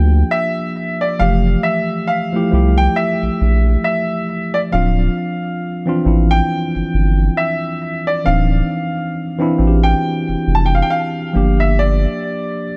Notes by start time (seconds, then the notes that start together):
Already playing: D2 F3 A#3 D4 F4 G4 G5
0.31 E5
1.01 D5
1.19 F1 E3 F3 A3 G4 F5
1.63 E5
2.07 F5
2.33 F3 A3 E4 G4
2.51 C2 F3 A3 E4 G4
2.78 G5
2.96 E5
3.23 A#1
3.41 A#1
3.84 E5
4.54 D5
4.72 D1 F3 C4 D4 F4 F5
5.86 E3 C4 D4 F4
6.04 A1 E3 C4 D4 E4
6.31 G5
6.76 G1
6.94 G1
7.37 E5
8.07 D5
8.24 D1 E3 C4 D4 D#4 F5
9.38 E3 C4 D4 E4
9.57 A1 E3 C4 D4 F#4
9.67 G4
9.83 G5
10.29 F1
10.47 F1
10.55 A5
10.66 G5
10.75 F5
10.82 G5
10.90 F5
11.33 G1 F3 A#3 D4 G4
11.60 E5
11.79 D5